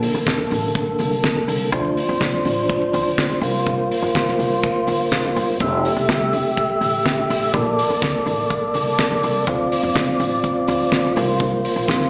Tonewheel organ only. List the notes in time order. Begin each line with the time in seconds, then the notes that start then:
Already playing: D3 A#3 A4
1.72 F3 D4 C5
3.42 A#3 F4 C5
5.61 A3 G4 E5
7.53 A#3 A4 D5
9.47 C4 F4
11.16 A#3 C5